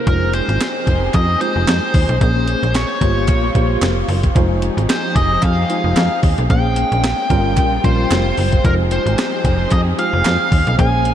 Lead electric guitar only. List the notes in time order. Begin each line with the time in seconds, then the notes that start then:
0.08 A#4
0.35 C5
1.15 D#5
1.41 C5
2.22 C5
2.76 C#5
4.90 C5
5.16 D#5
5.43 F5
6.50 G5
7.85 C5
8.65 A#4
8.92 C5
9.72 D#5
9.99 F5
10.80 G#5